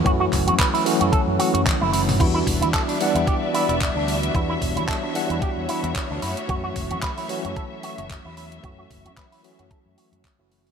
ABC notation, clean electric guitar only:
X:1
M:4/4
L:1/16
Q:"Swing 16ths" 1/4=112
K:Edor
V:1 name="Clean electric guitar"
F F z F B E z F A z F F z E E z | E E z E A D z E G z E E z D D z | E E z E A D z E G z E E z D E z | F F z F B E z F A z F F z E E z |
F F z F B E z F A z F F z E E z |]